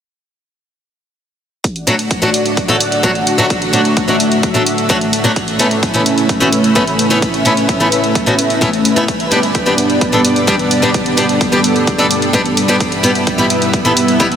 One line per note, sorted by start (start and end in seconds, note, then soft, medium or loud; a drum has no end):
1.64 9.04 A3 medium
1.64 5.33 D4 medium
1.64 5.33 F#4 medium
1.64 3.48 D5 medium
1.64 5.33 F#5 medium
1.64 kick loud
1.64 closed hi-hat medium
1.76 closed hi-hat soft
1.87 1.94 F#3 medium
1.87 1.94 A3 medium
1.87 1.94 D4 medium
1.87 1.94 F#4 medium
1.87 closed hi-hat medium
1.99 closed hi-hat soft
2.11 kick loud
2.11 closed hi-hat medium
2.22 2.29 F#3 medium
2.22 2.29 A3 medium
2.22 2.29 D4 medium
2.22 2.29 F#4 medium
2.22 closed hi-hat soft
2.34 closed hi-hat medium
2.46 closed hi-hat soft
2.57 kick loud
2.57 closed hi-hat medium
2.68 2.75 F#3 medium
2.68 2.75 A3 medium
2.68 2.75 D4 medium
2.68 2.76 A4 medium
2.68 closed hi-hat soft
2.80 closed hi-hat medium
2.92 closed hi-hat soft
3.03 3.10 F#3 medium
3.03 3.10 A3 medium
3.03 3.10 D4 medium
3.03 3.11 F#4 medium
3.03 kick loud
3.03 closed hi-hat medium
3.15 closed hi-hat soft
3.27 closed hi-hat medium
3.38 3.45 F#3 medium
3.38 3.45 A3 medium
3.38 3.45 D4 medium
3.38 3.45 F#4 medium
3.38 closed hi-hat soft
3.50 5.34 E5 medium
3.50 kick loud
3.50 closed hi-hat medium
3.62 closed hi-hat soft
3.73 3.80 F#3 medium
3.73 3.80 A3 medium
3.73 3.80 D4 medium
3.73 3.80 F#4 medium
3.73 closed hi-hat medium
3.85 closed hi-hat soft
3.97 kick loud
3.97 closed hi-hat medium
4.08 4.15 F#3 medium
4.08 4.15 A3 medium
4.08 4.15 D4 medium
4.08 4.15 F#4 medium
4.08 closed hi-hat soft
4.20 closed hi-hat medium
4.32 closed hi-hat soft
4.43 kick loud
4.43 closed hi-hat medium
4.54 4.61 F#3 medium
4.54 4.61 A3 medium
4.54 4.61 D4 medium
4.54 4.62 A4 medium
4.54 closed hi-hat soft
4.67 closed hi-hat medium
4.78 closed hi-hat soft
4.89 4.96 F#3 medium
4.89 4.96 A3 medium
4.89 4.96 D4 medium
4.89 4.97 F#4 loud
4.89 kick loud
4.89 closed hi-hat medium
5.01 closed hi-hat soft
5.13 closed hi-hat medium
5.24 5.31 F#3 medium
5.24 5.31 A3 medium
5.24 5.31 D4 medium
5.24 5.31 F#4 medium
5.24 closed hi-hat soft
5.36 9.05 C#4 medium
5.36 9.05 E4 medium
5.36 10.90 B4 medium
5.36 9.05 E5 medium
5.36 kick loud
5.36 closed hi-hat medium
5.48 closed hi-hat soft
5.59 5.66 A3 medium
5.59 5.66 B3 medium
5.59 5.66 C#4 medium
5.59 5.66 E4 medium
5.59 closed hi-hat medium
5.71 closed hi-hat soft
5.83 kick loud
5.83 closed hi-hat medium
5.94 6.01 A3 medium
5.94 6.01 B3 medium
5.94 6.01 C#4 medium
5.94 6.01 E4 medium
5.94 closed hi-hat soft
6.06 closed hi-hat medium
6.18 closed hi-hat soft
6.29 kick loud
6.29 closed hi-hat medium
6.40 6.47 A3 medium
6.40 6.47 B3 medium
6.40 6.48 C#4 medium
6.40 6.48 F#4 medium
6.40 closed hi-hat soft
6.53 closed hi-hat medium
6.64 closed hi-hat soft
6.75 6.82 A3 medium
6.75 6.82 B3 medium
6.75 6.82 C#4 medium
6.75 6.83 E4 medium
6.75 kick loud
6.75 closed hi-hat medium
6.87 closed hi-hat soft
6.99 closed hi-hat medium
7.10 7.17 A3 medium
7.10 7.17 B3 medium
7.10 7.17 C#4 medium
7.10 7.18 E4 medium
7.10 closed hi-hat soft
7.22 kick loud
7.22 closed hi-hat medium
7.34 closed hi-hat soft
7.45 7.52 A3 medium
7.45 7.52 B3 medium
7.45 7.52 C#4 medium
7.45 7.52 E4 medium
7.45 closed hi-hat medium
7.57 closed hi-hat soft
7.69 kick loud
7.69 closed hi-hat medium
7.80 7.87 A3 medium
7.80 7.87 B3 medium
7.80 7.87 C#4 medium
7.80 7.87 E4 medium
7.80 closed hi-hat soft
7.92 closed hi-hat medium
8.04 closed hi-hat soft
8.15 kick loud
8.15 closed hi-hat medium
8.26 8.33 A3 medium
8.26 8.33 B3 medium
8.26 8.34 C#4 medium
8.26 8.34 F#4 medium
8.26 closed hi-hat soft
8.39 closed hi-hat medium
8.50 closed hi-hat soft
8.61 8.68 A3 medium
8.61 8.68 B3 medium
8.61 8.68 C#4 medium
8.61 8.69 E4 medium
8.61 kick loud
8.61 closed hi-hat medium
8.73 closed hi-hat soft
8.85 closed hi-hat medium
8.96 9.03 A3 medium
8.96 9.03 B3 medium
8.96 9.03 C#4 medium
8.96 9.04 E4 medium
8.96 closed hi-hat soft
9.08 14.36 G3 medium
9.08 12.77 B3 medium
9.08 12.77 D4 medium
9.08 12.77 D5 medium
9.08 kick loud
9.08 closed hi-hat medium
9.20 closed hi-hat soft
9.31 9.38 G3 medium
9.31 9.38 B3 medium
9.31 9.38 D4 medium
9.31 9.38 G4 medium
9.31 closed hi-hat medium
9.43 closed hi-hat soft
9.55 kick loud
9.55 closed hi-hat medium
9.66 9.73 G3 medium
9.66 9.73 B3 medium
9.66 9.73 D4 medium
9.66 9.73 G4 medium
9.66 closed hi-hat soft
9.78 closed hi-hat medium
9.90 closed hi-hat soft
10.01 kick loud
10.01 closed hi-hat medium
10.12 10.19 G3 medium
10.12 10.19 B3 medium
10.12 10.20 D4 medium
10.12 10.20 A4 medium
10.12 closed hi-hat soft
10.25 closed hi-hat medium
10.36 closed hi-hat soft
10.47 10.54 G3 medium
10.47 10.54 B3 medium
10.47 10.54 D4 medium
10.47 10.55 G4 loud
10.47 kick loud
10.47 closed hi-hat medium
10.59 closed hi-hat soft
10.71 closed hi-hat medium
10.82 10.89 G3 medium
10.82 10.89 B3 medium
10.82 10.89 D4 medium
10.82 10.90 G4 medium
10.82 closed hi-hat soft
10.94 12.79 A4 medium
10.94 kick loud
10.94 closed hi-hat medium
11.06 closed hi-hat soft
11.17 11.24 G3 medium
11.17 11.24 B3 medium
11.17 11.24 D4 medium
11.17 11.24 G4 medium
11.17 closed hi-hat medium
11.29 closed hi-hat soft
11.41 kick loud
11.41 closed hi-hat medium
11.52 11.59 G3 medium
11.52 11.59 B3 medium
11.52 11.59 D4 medium
11.52 11.59 G4 medium
11.52 closed hi-hat soft
11.64 closed hi-hat medium
11.76 closed hi-hat soft
11.87 kick loud
11.87 closed hi-hat medium
11.98 12.05 G3 medium
11.98 12.05 B3 medium
11.98 12.06 D4 medium
11.98 12.06 A4 medium
11.98 closed hi-hat soft
12.11 closed hi-hat medium
12.22 closed hi-hat soft
12.33 12.40 G3 medium
12.33 12.40 B3 medium
12.33 12.41 D4 medium
12.33 12.41 G4 medium
12.33 kick loud
12.33 closed hi-hat medium
12.46 closed hi-hat soft
12.57 closed hi-hat medium
12.68 12.75 G3 medium
12.68 12.75 B3 medium
12.68 12.75 D4 medium
12.68 12.76 G4 loud
12.68 closed hi-hat soft
12.80 14.36 B3 medium
12.80 14.36 E4 medium
12.80 14.36 B4 medium
12.80 14.36 E5 medium
12.80 kick loud
12.80 closed hi-hat medium
12.92 closed hi-hat soft
13.03 13.10 G3 medium
13.03 13.10 B3 medium
13.03 13.10 E4 medium
13.03 13.11 G4 medium
13.03 closed hi-hat medium
13.15 closed hi-hat soft
13.27 kick loud
13.27 closed hi-hat medium
13.38 13.45 G3 medium
13.38 13.45 B3 medium
13.38 13.45 E4 medium
13.38 13.45 G4 medium
13.38 closed hi-hat soft
13.50 closed hi-hat medium
13.62 closed hi-hat soft
13.73 kick loud
13.73 closed hi-hat medium
13.85 13.91 G3 medium
13.85 13.92 B3 medium
13.85 13.92 E4 medium
13.85 13.92 A4 medium
13.85 closed hi-hat soft
13.97 closed hi-hat medium
14.08 closed hi-hat soft
14.20 14.26 G3 medium
14.20 14.26 B3 medium
14.20 14.27 E4 medium
14.20 14.27 G4 medium
14.20 kick loud
14.20 closed hi-hat medium
14.32 closed hi-hat soft